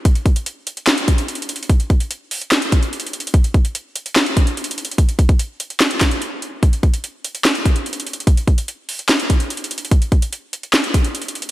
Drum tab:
HH |x--x--x--x--x-----x--x--x--x--x--x--x-x-x-x-x-x-|x--x--x--x--x-----o--x--x--x--x--x--x-x-x-x-x-x-|x--x--x--x--x-----x--x--x--x--x--x--x-x-x-x-x-x-|x--x--x--x--x-----x--x--x--x--x--x--x-----x-----|
CP |------------------------x-----------------------|------------------------x-----------------------|------------------------x-----------------------|------------------------x-----x-----------------|
SD |------------------------o-----------------------|------------------------o-----------------------|------------------------o-----------------------|------------------------o-----o-----------------|
BD |o-----o-----------------------o-----------------|o-----o-----------------------o-----------------|o-----o-----------------------o-----------------|o-----o--o--------------------o-----------------|

HH |x--x--x--x--x-----x--x--x--x--x--x--x-x-x-x-x-x-|x--x--x--x--x-----o--x--x--x--x--x--x-x-x-x-x-x-|x--x--x--x--x-----x--x--x--x--x--x--x-x-x-x-x---|
CP |------------------------x-----------------------|------------------------x-----------------------|------------------------x-----------------------|
SD |------------------------o-----------------------|------------------------o-----------------------|------------------------o-----------------------|
BD |o-----o-----------------------o-----------------|o-----o-----------------------o-----------------|o-----o-----------------------o-----------------|